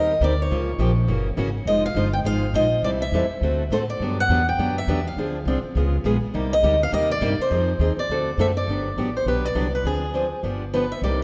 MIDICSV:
0, 0, Header, 1, 5, 480
1, 0, Start_track
1, 0, Tempo, 292255
1, 821, Time_signature, 4, 2, 24, 8
1, 18454, End_track
2, 0, Start_track
2, 0, Title_t, "Steel-string acoustic guitar"
2, 0, Program_c, 0, 25
2, 0, Note_on_c, 0, 75, 82
2, 376, Note_off_c, 0, 75, 0
2, 392, Note_on_c, 0, 74, 87
2, 659, Note_off_c, 0, 74, 0
2, 688, Note_on_c, 0, 73, 67
2, 2029, Note_off_c, 0, 73, 0
2, 2749, Note_on_c, 0, 75, 99
2, 3037, Note_off_c, 0, 75, 0
2, 3050, Note_on_c, 0, 77, 83
2, 3498, Note_off_c, 0, 77, 0
2, 3505, Note_on_c, 0, 79, 86
2, 3587, Note_off_c, 0, 79, 0
2, 3717, Note_on_c, 0, 77, 101
2, 4188, Note_off_c, 0, 77, 0
2, 4194, Note_on_c, 0, 75, 91
2, 4633, Note_off_c, 0, 75, 0
2, 4670, Note_on_c, 0, 74, 91
2, 4752, Note_off_c, 0, 74, 0
2, 4958, Note_on_c, 0, 76, 85
2, 6119, Note_on_c, 0, 72, 78
2, 6141, Note_off_c, 0, 76, 0
2, 6201, Note_off_c, 0, 72, 0
2, 6400, Note_on_c, 0, 74, 72
2, 6840, Note_off_c, 0, 74, 0
2, 6903, Note_on_c, 0, 78, 90
2, 7363, Note_off_c, 0, 78, 0
2, 7369, Note_on_c, 0, 79, 88
2, 7805, Note_off_c, 0, 79, 0
2, 7853, Note_on_c, 0, 76, 79
2, 8286, Note_off_c, 0, 76, 0
2, 8332, Note_on_c, 0, 77, 69
2, 9213, Note_off_c, 0, 77, 0
2, 10727, Note_on_c, 0, 75, 95
2, 11210, Note_off_c, 0, 75, 0
2, 11221, Note_on_c, 0, 77, 93
2, 11385, Note_off_c, 0, 77, 0
2, 11392, Note_on_c, 0, 75, 91
2, 11678, Note_off_c, 0, 75, 0
2, 11685, Note_on_c, 0, 74, 96
2, 12168, Note_off_c, 0, 74, 0
2, 12176, Note_on_c, 0, 72, 78
2, 13125, Note_on_c, 0, 74, 69
2, 13148, Note_off_c, 0, 72, 0
2, 13742, Note_off_c, 0, 74, 0
2, 13810, Note_on_c, 0, 76, 91
2, 13893, Note_off_c, 0, 76, 0
2, 14074, Note_on_c, 0, 74, 84
2, 14964, Note_off_c, 0, 74, 0
2, 15054, Note_on_c, 0, 72, 68
2, 15222, Note_off_c, 0, 72, 0
2, 15244, Note_on_c, 0, 71, 72
2, 15528, Note_off_c, 0, 71, 0
2, 15528, Note_on_c, 0, 74, 82
2, 16005, Note_off_c, 0, 74, 0
2, 16011, Note_on_c, 0, 71, 67
2, 16199, Note_off_c, 0, 71, 0
2, 16204, Note_on_c, 0, 68, 65
2, 17088, Note_off_c, 0, 68, 0
2, 17631, Note_on_c, 0, 71, 71
2, 17921, Note_off_c, 0, 71, 0
2, 17930, Note_on_c, 0, 76, 68
2, 18118, Note_off_c, 0, 76, 0
2, 18124, Note_on_c, 0, 74, 79
2, 18407, Note_off_c, 0, 74, 0
2, 18454, End_track
3, 0, Start_track
3, 0, Title_t, "Steel-string acoustic guitar"
3, 0, Program_c, 1, 25
3, 0, Note_on_c, 1, 51, 57
3, 0, Note_on_c, 1, 55, 62
3, 0, Note_on_c, 1, 60, 67
3, 0, Note_on_c, 1, 67, 75
3, 0, Note_on_c, 1, 70, 71
3, 193, Note_off_c, 1, 55, 0
3, 194, Note_off_c, 1, 51, 0
3, 196, Note_off_c, 1, 60, 0
3, 198, Note_off_c, 1, 67, 0
3, 202, Note_off_c, 1, 70, 0
3, 351, Note_on_c, 1, 51, 76
3, 351, Note_on_c, 1, 55, 88
3, 358, Note_on_c, 1, 60, 93
3, 365, Note_on_c, 1, 67, 93
3, 372, Note_on_c, 1, 70, 89
3, 522, Note_off_c, 1, 51, 0
3, 523, Note_off_c, 1, 55, 0
3, 526, Note_off_c, 1, 60, 0
3, 529, Note_off_c, 1, 67, 0
3, 533, Note_off_c, 1, 70, 0
3, 838, Note_on_c, 1, 49, 59
3, 844, Note_on_c, 1, 53, 63
3, 852, Note_on_c, 1, 58, 63
3, 852, Note_on_c, 1, 65, 70
3, 858, Note_on_c, 1, 67, 64
3, 1147, Note_off_c, 1, 49, 0
3, 1149, Note_off_c, 1, 53, 0
3, 1154, Note_off_c, 1, 58, 0
3, 1154, Note_off_c, 1, 65, 0
3, 1157, Note_off_c, 1, 67, 0
3, 1301, Note_on_c, 1, 49, 80
3, 1303, Note_on_c, 1, 53, 83
3, 1308, Note_on_c, 1, 58, 79
3, 1311, Note_on_c, 1, 65, 83
3, 1321, Note_on_c, 1, 67, 84
3, 1476, Note_off_c, 1, 49, 0
3, 1477, Note_off_c, 1, 53, 0
3, 1480, Note_off_c, 1, 58, 0
3, 1482, Note_off_c, 1, 65, 0
3, 1486, Note_off_c, 1, 67, 0
3, 1775, Note_on_c, 1, 49, 70
3, 1777, Note_on_c, 1, 52, 62
3, 1785, Note_on_c, 1, 58, 61
3, 1791, Note_on_c, 1, 61, 70
3, 1793, Note_on_c, 1, 66, 64
3, 2095, Note_off_c, 1, 49, 0
3, 2095, Note_off_c, 1, 52, 0
3, 2099, Note_off_c, 1, 58, 0
3, 2102, Note_off_c, 1, 61, 0
3, 2104, Note_off_c, 1, 66, 0
3, 2252, Note_on_c, 1, 49, 78
3, 2253, Note_on_c, 1, 52, 84
3, 2262, Note_on_c, 1, 58, 81
3, 2267, Note_on_c, 1, 61, 102
3, 2279, Note_on_c, 1, 66, 107
3, 2431, Note_off_c, 1, 49, 0
3, 2432, Note_off_c, 1, 52, 0
3, 2437, Note_off_c, 1, 58, 0
3, 2439, Note_off_c, 1, 61, 0
3, 2445, Note_off_c, 1, 66, 0
3, 2745, Note_on_c, 1, 53, 61
3, 2750, Note_on_c, 1, 63, 70
3, 2751, Note_on_c, 1, 56, 67
3, 2757, Note_on_c, 1, 65, 66
3, 2759, Note_on_c, 1, 72, 62
3, 3059, Note_off_c, 1, 53, 0
3, 3062, Note_off_c, 1, 56, 0
3, 3062, Note_off_c, 1, 63, 0
3, 3065, Note_off_c, 1, 65, 0
3, 3066, Note_off_c, 1, 72, 0
3, 3219, Note_on_c, 1, 53, 78
3, 3221, Note_on_c, 1, 56, 79
3, 3227, Note_on_c, 1, 63, 82
3, 3231, Note_on_c, 1, 65, 87
3, 3238, Note_on_c, 1, 72, 88
3, 3394, Note_off_c, 1, 53, 0
3, 3396, Note_off_c, 1, 56, 0
3, 3399, Note_off_c, 1, 63, 0
3, 3401, Note_off_c, 1, 65, 0
3, 3404, Note_off_c, 1, 72, 0
3, 3694, Note_on_c, 1, 53, 60
3, 3696, Note_on_c, 1, 56, 76
3, 3701, Note_on_c, 1, 63, 71
3, 3715, Note_on_c, 1, 65, 73
3, 3718, Note_on_c, 1, 72, 70
3, 4014, Note_off_c, 1, 53, 0
3, 4015, Note_off_c, 1, 56, 0
3, 4017, Note_off_c, 1, 63, 0
3, 4024, Note_off_c, 1, 65, 0
3, 4026, Note_off_c, 1, 72, 0
3, 4174, Note_on_c, 1, 53, 94
3, 4180, Note_on_c, 1, 56, 92
3, 4180, Note_on_c, 1, 63, 82
3, 4191, Note_on_c, 1, 72, 94
3, 4193, Note_on_c, 1, 65, 96
3, 4352, Note_off_c, 1, 53, 0
3, 4355, Note_off_c, 1, 56, 0
3, 4355, Note_off_c, 1, 63, 0
3, 4361, Note_off_c, 1, 65, 0
3, 4361, Note_off_c, 1, 72, 0
3, 4671, Note_on_c, 1, 52, 55
3, 4672, Note_on_c, 1, 55, 66
3, 4679, Note_on_c, 1, 60, 68
3, 4692, Note_on_c, 1, 64, 66
3, 4693, Note_on_c, 1, 69, 74
3, 4983, Note_off_c, 1, 52, 0
3, 4983, Note_off_c, 1, 55, 0
3, 4986, Note_off_c, 1, 60, 0
3, 4993, Note_off_c, 1, 64, 0
3, 4994, Note_off_c, 1, 69, 0
3, 5146, Note_on_c, 1, 52, 76
3, 5154, Note_on_c, 1, 55, 82
3, 5156, Note_on_c, 1, 60, 86
3, 5167, Note_on_c, 1, 69, 88
3, 5171, Note_on_c, 1, 64, 80
3, 5318, Note_off_c, 1, 52, 0
3, 5322, Note_off_c, 1, 55, 0
3, 5324, Note_off_c, 1, 60, 0
3, 5329, Note_off_c, 1, 69, 0
3, 5331, Note_off_c, 1, 64, 0
3, 5628, Note_on_c, 1, 50, 61
3, 5636, Note_on_c, 1, 57, 66
3, 5640, Note_on_c, 1, 60, 70
3, 5640, Note_on_c, 1, 66, 67
3, 5648, Note_on_c, 1, 69, 68
3, 5941, Note_off_c, 1, 50, 0
3, 5945, Note_off_c, 1, 57, 0
3, 5947, Note_off_c, 1, 60, 0
3, 5947, Note_off_c, 1, 66, 0
3, 5951, Note_off_c, 1, 69, 0
3, 6103, Note_on_c, 1, 50, 85
3, 6110, Note_on_c, 1, 57, 85
3, 6112, Note_on_c, 1, 60, 83
3, 6120, Note_on_c, 1, 66, 100
3, 6125, Note_on_c, 1, 69, 94
3, 6277, Note_off_c, 1, 50, 0
3, 6281, Note_off_c, 1, 57, 0
3, 6282, Note_off_c, 1, 60, 0
3, 6286, Note_off_c, 1, 66, 0
3, 6288, Note_off_c, 1, 69, 0
3, 6591, Note_on_c, 1, 50, 57
3, 6602, Note_on_c, 1, 54, 63
3, 6605, Note_on_c, 1, 62, 69
3, 6607, Note_on_c, 1, 59, 62
3, 6617, Note_on_c, 1, 67, 61
3, 6903, Note_off_c, 1, 50, 0
3, 6908, Note_off_c, 1, 54, 0
3, 6910, Note_off_c, 1, 62, 0
3, 6911, Note_off_c, 1, 59, 0
3, 6916, Note_off_c, 1, 67, 0
3, 7059, Note_on_c, 1, 50, 83
3, 7068, Note_on_c, 1, 59, 84
3, 7070, Note_on_c, 1, 54, 75
3, 7077, Note_on_c, 1, 62, 78
3, 7083, Note_on_c, 1, 67, 82
3, 7235, Note_off_c, 1, 50, 0
3, 7240, Note_off_c, 1, 59, 0
3, 7241, Note_off_c, 1, 54, 0
3, 7245, Note_off_c, 1, 62, 0
3, 7247, Note_off_c, 1, 67, 0
3, 7530, Note_on_c, 1, 50, 68
3, 7543, Note_on_c, 1, 54, 66
3, 7546, Note_on_c, 1, 59, 74
3, 7546, Note_on_c, 1, 62, 75
3, 7553, Note_on_c, 1, 67, 65
3, 7853, Note_off_c, 1, 50, 0
3, 7859, Note_off_c, 1, 54, 0
3, 7861, Note_off_c, 1, 59, 0
3, 7861, Note_off_c, 1, 62, 0
3, 7864, Note_off_c, 1, 67, 0
3, 8019, Note_on_c, 1, 54, 89
3, 8022, Note_on_c, 1, 50, 91
3, 8024, Note_on_c, 1, 59, 94
3, 8029, Note_on_c, 1, 62, 94
3, 8033, Note_on_c, 1, 67, 85
3, 8196, Note_off_c, 1, 54, 0
3, 8197, Note_off_c, 1, 50, 0
3, 8198, Note_off_c, 1, 59, 0
3, 8201, Note_off_c, 1, 62, 0
3, 8203, Note_off_c, 1, 67, 0
3, 8508, Note_on_c, 1, 50, 71
3, 8514, Note_on_c, 1, 60, 64
3, 8516, Note_on_c, 1, 53, 60
3, 8522, Note_on_c, 1, 62, 63
3, 8524, Note_on_c, 1, 68, 71
3, 8822, Note_off_c, 1, 50, 0
3, 8825, Note_off_c, 1, 60, 0
3, 8826, Note_off_c, 1, 53, 0
3, 8829, Note_off_c, 1, 62, 0
3, 8830, Note_off_c, 1, 68, 0
3, 8991, Note_on_c, 1, 50, 76
3, 8992, Note_on_c, 1, 53, 75
3, 8996, Note_on_c, 1, 60, 88
3, 8998, Note_on_c, 1, 62, 85
3, 9004, Note_on_c, 1, 68, 77
3, 9162, Note_off_c, 1, 50, 0
3, 9162, Note_off_c, 1, 53, 0
3, 9164, Note_off_c, 1, 60, 0
3, 9165, Note_off_c, 1, 62, 0
3, 9169, Note_off_c, 1, 68, 0
3, 9468, Note_on_c, 1, 49, 68
3, 9470, Note_on_c, 1, 56, 71
3, 9475, Note_on_c, 1, 59, 67
3, 9476, Note_on_c, 1, 65, 71
3, 9484, Note_on_c, 1, 68, 68
3, 9782, Note_off_c, 1, 49, 0
3, 9783, Note_off_c, 1, 56, 0
3, 9786, Note_off_c, 1, 59, 0
3, 9786, Note_off_c, 1, 65, 0
3, 9790, Note_off_c, 1, 68, 0
3, 9934, Note_on_c, 1, 49, 87
3, 9944, Note_on_c, 1, 56, 91
3, 9946, Note_on_c, 1, 59, 100
3, 9950, Note_on_c, 1, 65, 88
3, 9952, Note_on_c, 1, 68, 93
3, 10113, Note_off_c, 1, 49, 0
3, 10118, Note_off_c, 1, 56, 0
3, 10119, Note_off_c, 1, 59, 0
3, 10121, Note_off_c, 1, 65, 0
3, 10122, Note_off_c, 1, 68, 0
3, 10407, Note_on_c, 1, 48, 62
3, 10417, Note_on_c, 1, 55, 66
3, 10423, Note_on_c, 1, 58, 66
3, 10423, Note_on_c, 1, 63, 69
3, 10427, Note_on_c, 1, 67, 78
3, 10731, Note_off_c, 1, 48, 0
3, 10736, Note_off_c, 1, 55, 0
3, 10739, Note_off_c, 1, 58, 0
3, 10739, Note_off_c, 1, 63, 0
3, 10741, Note_off_c, 1, 67, 0
3, 10889, Note_on_c, 1, 48, 78
3, 10896, Note_on_c, 1, 55, 83
3, 10901, Note_on_c, 1, 58, 83
3, 10907, Note_on_c, 1, 63, 96
3, 10908, Note_on_c, 1, 67, 88
3, 11070, Note_off_c, 1, 48, 0
3, 11074, Note_off_c, 1, 55, 0
3, 11077, Note_off_c, 1, 58, 0
3, 11079, Note_off_c, 1, 63, 0
3, 11080, Note_off_c, 1, 67, 0
3, 11369, Note_on_c, 1, 48, 67
3, 11370, Note_on_c, 1, 55, 61
3, 11375, Note_on_c, 1, 58, 77
3, 11380, Note_on_c, 1, 67, 70
3, 11381, Note_on_c, 1, 63, 73
3, 11692, Note_off_c, 1, 48, 0
3, 11692, Note_off_c, 1, 55, 0
3, 11695, Note_off_c, 1, 58, 0
3, 11697, Note_off_c, 1, 67, 0
3, 11698, Note_off_c, 1, 63, 0
3, 11841, Note_on_c, 1, 48, 96
3, 11855, Note_on_c, 1, 55, 100
3, 11858, Note_on_c, 1, 58, 99
3, 11859, Note_on_c, 1, 67, 111
3, 11861, Note_on_c, 1, 63, 91
3, 12026, Note_off_c, 1, 48, 0
3, 12033, Note_off_c, 1, 55, 0
3, 12035, Note_off_c, 1, 58, 0
3, 12035, Note_off_c, 1, 67, 0
3, 12036, Note_off_c, 1, 63, 0
3, 12325, Note_on_c, 1, 53, 66
3, 12333, Note_on_c, 1, 60, 65
3, 12342, Note_on_c, 1, 63, 68
3, 12347, Note_on_c, 1, 68, 68
3, 12650, Note_off_c, 1, 53, 0
3, 12654, Note_off_c, 1, 60, 0
3, 12658, Note_off_c, 1, 63, 0
3, 12660, Note_off_c, 1, 68, 0
3, 12807, Note_on_c, 1, 53, 76
3, 12824, Note_on_c, 1, 60, 80
3, 12826, Note_on_c, 1, 63, 80
3, 12830, Note_on_c, 1, 68, 95
3, 12989, Note_off_c, 1, 53, 0
3, 12998, Note_off_c, 1, 60, 0
3, 12998, Note_off_c, 1, 63, 0
3, 13000, Note_off_c, 1, 68, 0
3, 13316, Note_on_c, 1, 50, 57
3, 13323, Note_on_c, 1, 60, 67
3, 13324, Note_on_c, 1, 57, 68
3, 13325, Note_on_c, 1, 66, 68
3, 13327, Note_on_c, 1, 69, 68
3, 13625, Note_off_c, 1, 50, 0
3, 13629, Note_off_c, 1, 57, 0
3, 13629, Note_off_c, 1, 60, 0
3, 13629, Note_off_c, 1, 66, 0
3, 13630, Note_off_c, 1, 69, 0
3, 13780, Note_on_c, 1, 50, 89
3, 13785, Note_on_c, 1, 57, 92
3, 13790, Note_on_c, 1, 60, 94
3, 13790, Note_on_c, 1, 66, 83
3, 13795, Note_on_c, 1, 69, 94
3, 13956, Note_off_c, 1, 50, 0
3, 13958, Note_off_c, 1, 57, 0
3, 13961, Note_off_c, 1, 60, 0
3, 13961, Note_off_c, 1, 66, 0
3, 13963, Note_off_c, 1, 69, 0
3, 14273, Note_on_c, 1, 50, 55
3, 14279, Note_on_c, 1, 54, 54
3, 14284, Note_on_c, 1, 59, 57
3, 14287, Note_on_c, 1, 62, 59
3, 14292, Note_on_c, 1, 67, 64
3, 14584, Note_off_c, 1, 50, 0
3, 14587, Note_off_c, 1, 54, 0
3, 14589, Note_off_c, 1, 59, 0
3, 14591, Note_off_c, 1, 62, 0
3, 14593, Note_off_c, 1, 67, 0
3, 14740, Note_on_c, 1, 50, 68
3, 14746, Note_on_c, 1, 59, 71
3, 14747, Note_on_c, 1, 54, 65
3, 14755, Note_on_c, 1, 62, 77
3, 14759, Note_on_c, 1, 67, 73
3, 14916, Note_off_c, 1, 50, 0
3, 14919, Note_off_c, 1, 59, 0
3, 14920, Note_off_c, 1, 54, 0
3, 14924, Note_off_c, 1, 62, 0
3, 14925, Note_off_c, 1, 67, 0
3, 15221, Note_on_c, 1, 50, 56
3, 15228, Note_on_c, 1, 59, 60
3, 15229, Note_on_c, 1, 54, 53
3, 15238, Note_on_c, 1, 62, 63
3, 15239, Note_on_c, 1, 67, 61
3, 15538, Note_off_c, 1, 50, 0
3, 15542, Note_off_c, 1, 54, 0
3, 15542, Note_off_c, 1, 59, 0
3, 15547, Note_off_c, 1, 62, 0
3, 15547, Note_off_c, 1, 67, 0
3, 15688, Note_on_c, 1, 50, 74
3, 15688, Note_on_c, 1, 54, 84
3, 15695, Note_on_c, 1, 59, 88
3, 15697, Note_on_c, 1, 62, 81
3, 15707, Note_on_c, 1, 67, 82
3, 15870, Note_off_c, 1, 50, 0
3, 15870, Note_off_c, 1, 54, 0
3, 15874, Note_off_c, 1, 59, 0
3, 15875, Note_off_c, 1, 62, 0
3, 15880, Note_off_c, 1, 67, 0
3, 16179, Note_on_c, 1, 50, 58
3, 16184, Note_on_c, 1, 53, 61
3, 16185, Note_on_c, 1, 60, 60
3, 16187, Note_on_c, 1, 62, 61
3, 16197, Note_on_c, 1, 68, 65
3, 16498, Note_off_c, 1, 50, 0
3, 16500, Note_off_c, 1, 53, 0
3, 16501, Note_off_c, 1, 60, 0
3, 16502, Note_off_c, 1, 62, 0
3, 16507, Note_off_c, 1, 68, 0
3, 16652, Note_on_c, 1, 50, 73
3, 16655, Note_on_c, 1, 53, 68
3, 16662, Note_on_c, 1, 60, 74
3, 16675, Note_on_c, 1, 62, 81
3, 16680, Note_on_c, 1, 68, 80
3, 16833, Note_off_c, 1, 50, 0
3, 16835, Note_off_c, 1, 53, 0
3, 16838, Note_off_c, 1, 60, 0
3, 16845, Note_off_c, 1, 62, 0
3, 16847, Note_off_c, 1, 68, 0
3, 17138, Note_on_c, 1, 50, 53
3, 17138, Note_on_c, 1, 53, 67
3, 17147, Note_on_c, 1, 59, 59
3, 17151, Note_on_c, 1, 62, 62
3, 17156, Note_on_c, 1, 67, 71
3, 17458, Note_off_c, 1, 50, 0
3, 17458, Note_off_c, 1, 53, 0
3, 17463, Note_off_c, 1, 59, 0
3, 17464, Note_off_c, 1, 62, 0
3, 17467, Note_off_c, 1, 67, 0
3, 17636, Note_on_c, 1, 50, 72
3, 17639, Note_on_c, 1, 53, 88
3, 17642, Note_on_c, 1, 59, 91
3, 17646, Note_on_c, 1, 62, 93
3, 17650, Note_on_c, 1, 67, 90
3, 17805, Note_off_c, 1, 50, 0
3, 17807, Note_off_c, 1, 53, 0
3, 17808, Note_off_c, 1, 59, 0
3, 17811, Note_off_c, 1, 62, 0
3, 17812, Note_off_c, 1, 67, 0
3, 18123, Note_on_c, 1, 48, 63
3, 18129, Note_on_c, 1, 55, 63
3, 18135, Note_on_c, 1, 58, 64
3, 18141, Note_on_c, 1, 63, 67
3, 18141, Note_on_c, 1, 67, 63
3, 18431, Note_off_c, 1, 48, 0
3, 18434, Note_off_c, 1, 55, 0
3, 18437, Note_off_c, 1, 58, 0
3, 18440, Note_off_c, 1, 63, 0
3, 18440, Note_off_c, 1, 67, 0
3, 18454, End_track
4, 0, Start_track
4, 0, Title_t, "Upright bass"
4, 0, Program_c, 2, 32
4, 0, Note_on_c, 2, 39, 75
4, 326, Note_off_c, 2, 39, 0
4, 342, Note_on_c, 2, 38, 85
4, 806, Note_off_c, 2, 38, 0
4, 832, Note_on_c, 2, 37, 80
4, 1281, Note_off_c, 2, 37, 0
4, 1291, Note_on_c, 2, 34, 88
4, 1760, Note_off_c, 2, 34, 0
4, 1767, Note_on_c, 2, 30, 84
4, 2238, Note_off_c, 2, 30, 0
4, 2247, Note_on_c, 2, 32, 89
4, 2705, Note_off_c, 2, 32, 0
4, 2714, Note_on_c, 2, 29, 77
4, 3185, Note_off_c, 2, 29, 0
4, 3195, Note_on_c, 2, 31, 93
4, 3672, Note_off_c, 2, 31, 0
4, 3682, Note_on_c, 2, 32, 77
4, 4148, Note_off_c, 2, 32, 0
4, 4157, Note_on_c, 2, 34, 80
4, 4625, Note_off_c, 2, 34, 0
4, 4635, Note_on_c, 2, 36, 75
4, 5112, Note_off_c, 2, 36, 0
4, 5120, Note_on_c, 2, 40, 86
4, 5394, Note_off_c, 2, 40, 0
4, 5601, Note_on_c, 2, 38, 75
4, 6075, Note_off_c, 2, 38, 0
4, 6084, Note_on_c, 2, 45, 80
4, 6557, Note_off_c, 2, 45, 0
4, 6567, Note_on_c, 2, 43, 76
4, 7032, Note_off_c, 2, 43, 0
4, 7042, Note_on_c, 2, 40, 86
4, 7516, Note_off_c, 2, 40, 0
4, 7529, Note_on_c, 2, 42, 74
4, 7995, Note_off_c, 2, 42, 0
4, 8005, Note_on_c, 2, 40, 89
4, 8468, Note_off_c, 2, 40, 0
4, 8478, Note_on_c, 2, 38, 73
4, 8948, Note_off_c, 2, 38, 0
4, 8958, Note_on_c, 2, 36, 86
4, 9234, Note_off_c, 2, 36, 0
4, 9446, Note_on_c, 2, 37, 84
4, 9911, Note_off_c, 2, 37, 0
4, 9921, Note_on_c, 2, 34, 92
4, 10195, Note_off_c, 2, 34, 0
4, 10415, Note_on_c, 2, 36, 81
4, 10883, Note_off_c, 2, 36, 0
4, 10891, Note_on_c, 2, 38, 92
4, 11360, Note_off_c, 2, 38, 0
4, 11373, Note_on_c, 2, 39, 80
4, 11836, Note_off_c, 2, 39, 0
4, 11846, Note_on_c, 2, 43, 96
4, 12117, Note_off_c, 2, 43, 0
4, 12330, Note_on_c, 2, 41, 78
4, 12788, Note_off_c, 2, 41, 0
4, 12797, Note_on_c, 2, 39, 84
4, 13072, Note_off_c, 2, 39, 0
4, 13288, Note_on_c, 2, 38, 81
4, 13750, Note_off_c, 2, 38, 0
4, 13760, Note_on_c, 2, 42, 88
4, 14228, Note_off_c, 2, 42, 0
4, 14238, Note_on_c, 2, 31, 78
4, 14631, Note_off_c, 2, 31, 0
4, 14719, Note_on_c, 2, 33, 67
4, 15136, Note_off_c, 2, 33, 0
4, 15207, Note_on_c, 2, 35, 67
4, 15620, Note_off_c, 2, 35, 0
4, 15685, Note_on_c, 2, 36, 75
4, 16100, Note_off_c, 2, 36, 0
4, 16164, Note_on_c, 2, 38, 74
4, 16939, Note_off_c, 2, 38, 0
4, 17131, Note_on_c, 2, 31, 73
4, 17904, Note_off_c, 2, 31, 0
4, 18088, Note_on_c, 2, 36, 74
4, 18454, Note_off_c, 2, 36, 0
4, 18454, End_track
5, 0, Start_track
5, 0, Title_t, "Muted upright bass strokes"
5, 5407, Note_on_c, 9, 29, 38
5, 5571, Note_off_c, 9, 29, 0
5, 9257, Note_on_c, 9, 29, 40
5, 9421, Note_off_c, 9, 29, 0
5, 10220, Note_on_c, 9, 29, 41
5, 10385, Note_off_c, 9, 29, 0
5, 12132, Note_on_c, 9, 29, 42
5, 12297, Note_off_c, 9, 29, 0
5, 13092, Note_on_c, 9, 29, 40
5, 13256, Note_off_c, 9, 29, 0
5, 18454, End_track
0, 0, End_of_file